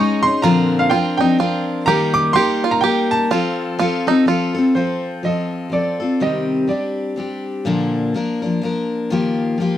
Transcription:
Already playing: steel-string acoustic guitar G#3 C#4 D#4, five-string banjo D#4, upright piano C#6
0.00 steel-string acoustic guitar G#4
0.23 steel-string acoustic guitar C#4 D#4 G#4, upright piano C6
0.42 steel-string acoustic guitar A#2 D3 F3 C4 D4 A#4, five-string banjo F4, upright piano A#5
0.79 upright piano F5
0.90 steel-string acoustic guitar F3 C4 D4, five-string banjo F4, upright piano G5
0.95 steel-string acoustic guitar A#4
1.17 steel-string acoustic guitar C4 D4 A#4, five-string banjo D#4, upright piano G5
1.22 steel-string acoustic guitar F3
1.38 steel-string acoustic guitar F3 C4 D4 A#4, five-string banjo F4
1.86 steel-string acoustic guitar D#3 G3 A#3 D#4 A#4, five-string banjo G4, upright piano A#5
2.14 upright piano D6
2.33 steel-string acoustic guitar G3 A#3 D#4 A#4, five-string banjo G4, upright piano C6
2.64 five-string banjo F4
2.71 upright piano A#5
2.81 steel-string acoustic guitar G3 A#3, five-string banjo G4, upright piano G5
2.85 steel-string acoustic guitar D#4 A#4
3.11 upright piano A5
3.31 steel-string acoustic guitar F3 C4 F4 A4, five-string banjo F4
3.79 steel-string acoustic guitar F3 C4 F4 A4, five-string banjo F4
4.07 steel-string acoustic guitar C4 F4 A4, five-string banjo D#4
4.26 steel-string acoustic guitar F3 C4 F4, five-string banjo F4
4.30 steel-string acoustic guitar A4
4.54 steel-string acoustic guitar C4 F4 A4
4.75 steel-string acoustic guitar F3 C4 F4 A4, upright piano C5
5.23 steel-string acoustic guitar F3 C4 F4 A4, upright piano D#5
5.70 steel-string acoustic guitar F3 C4 F4 A4, upright piano D5
6.00 steel-string acoustic guitar C4 F4 A4
6.20 steel-string acoustic guitar C3 D#3 G3 C4 G4, upright piano D#5
6.67 steel-string acoustic guitar G3 C4 D4 G4, upright piano D5
7.16 steel-string acoustic guitar G3 C4 D4 G4
7.65 steel-string acoustic guitar A#2 D3 F3 A#3 D4 A#4
8.14 steel-string acoustic guitar F3 A#3 D4 A#4
8.42 steel-string acoustic guitar F3 A#3 D4 A#4
8.62 steel-string acoustic guitar F3 A#3 D4 A#4
9.10 steel-string acoustic guitar D#3 F3 A#3 F4 G4
9.58 steel-string acoustic guitar F3 A#3 F4 G4

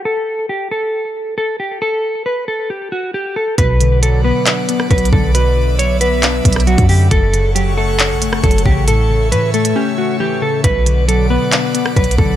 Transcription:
0.05 clean electric guitar A4
0.49 clean electric guitar G4
0.71 clean electric guitar A4
1.38 clean electric guitar A4
1.60 clean electric guitar G4
1.82 clean electric guitar A4
2.26 clean electric guitar B4
2.48 clean electric guitar A4
2.70 clean electric guitar G4
2.92 clean electric guitar F#4
3.14 clean electric guitar G4
3.36 clean electric guitar A4
3.58 808-style bass B1, synth keys B2, analog synth pad B4 D5 F#5 D6, clean electric guitar B4, kick, closed hi-hat
3.80 synth keys D3, closed hi-hat
4.02 synth keys F#3, clean electric guitar A4, closed hi-hat
4.24 synth keys B3, clean electric guitar B4
4.46 synth keys D4, clap, closed hi-hat
4.69 synth keys B3, closed hi-hat
4.80 cross-stick
4.91 808-style bass B1, synth keys F#3, clean electric guitar B4, kick, closed hi-hat
4.98 closed hi-hat
5.05 closed hi-hat
5.13 808-style bass B1, synth keys D3, clean electric guitar A4, kick
5.35 synth keys B2, clean electric guitar B4, analog synth pad E5, closed hi-hat
5.57 synth keys D3
5.79 synth keys F#3, clean electric guitar C#5, closed hi-hat
6.01 synth keys B3, clean electric guitar B4, closed hi-hat
6.23 synth keys D4, clap, closed hi-hat
6.45 808-style bass B1, synth keys B3, kick, closed hi-hat
6.53 cross-stick, closed hi-hat
6.60 closed hi-hat
6.67 synth keys F#3, clean electric guitar F#4, closed hi-hat
6.78 808-style bass F#2, kick, closed hi-hat
6.89 synth keys D3, clean electric guitar G4, open hi-hat
7.11 808-style bass F#1, synth keys F#2, analog synth pad A4 C#5 F#5 C#6, clean electric guitar A4, kick, closed hi-hat
7.34 synth keys C#3, closed hi-hat
7.55 synth keys F#3, clean electric guitar G4, closed hi-hat
7.78 synth keys A3, clean electric guitar A4
7.99 synth keys C#4, clap, closed hi-hat
8.11 808-style bass A1
8.22 synth keys A3, closed hi-hat
8.27 808-style bass F#1
8.33 cross-stick
8.44 808-style bass F#1, synth keys F#3, clean electric guitar A4, kick, closed hi-hat
8.51 closed hi-hat
8.58 closed hi-hat
8.66 808-style bass A1, synth keys C#3, clean electric guitar G4, kick
8.88 synth keys A2, clean electric guitar A4, analog synth pad C#5 E5, closed hi-hat
9.10 synth keys C#3
9.32 808-style bass A2, synth keys E3, clean electric guitar B4, closed hi-hat
9.54 synth keys A3, clean electric guitar A4, closed hi-hat
9.65 closed hi-hat
9.76 synth keys C#4, clean electric guitar G4
9.98 synth keys A3, clean electric guitar F#4
10.20 synth keys E3, clean electric guitar G4
10.42 synth keys C#3, clean electric guitar A4
10.64 808-style bass B1, synth keys B2, analog synth pad B4 D5 F#5 D6, clean electric guitar B4, kick, closed hi-hat
10.86 synth keys D3, closed hi-hat
11.08 synth keys F#3, clean electric guitar A4, closed hi-hat
11.30 synth keys B3, clean electric guitar B4
11.52 synth keys D4, clap, closed hi-hat
11.75 synth keys B3, closed hi-hat
11.86 cross-stick
11.96 808-style bass B1, synth keys F#3, clean electric guitar B4, kick, closed hi-hat
12.04 closed hi-hat
12.11 closed hi-hat
12.18 808-style bass B1, synth keys D3, clean electric guitar A4, kick

